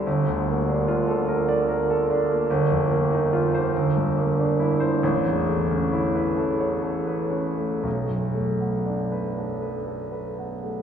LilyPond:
\new Staff \with { instrumentName = "Grand piano" } { \time 6/8 \key c \mixolydian \tempo 4. = 45 g,,16 d,16 bes16 d'16 f'16 a'16 bes'16 d''16 bes'16 a'16 d'16 bes16 | g,,16 f,16 bes16 ees'16 f'16 c''16 g,,16 g,16 bes16 d'16 e'16 c''16 | \key b \minor a,,16 e,16 a16 cis'16 e'16 b'16 a'16 cis''16 a'16 b'16 cis'16 a16 | b,,16 fis,16 a16 b16 d'16 b'16 a'16 b'16 a'16 b'16 b16 a16 | }